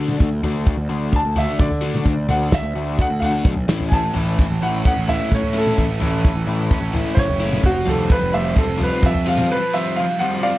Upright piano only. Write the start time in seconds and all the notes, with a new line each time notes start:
1.16 A5
1.38 E5
1.60 D5
2.30 F#5
2.54 E5
3.01 F#5
3.20 F5
3.25 F#5
3.88 G#5
3.93 A5
4.63 F#5
4.87 F#5
5.09 E5
5.35 C#5
5.58 A4
7.15 C5
7.19 C#5
7.66 F#4
7.89 A4
8.12 B4
8.34 E5
8.58 A4
8.83 B4
9.06 E5
9.29 F5
9.52 B4
9.74 E5
9.96 F5
10.19 F#5
10.43 D5 F5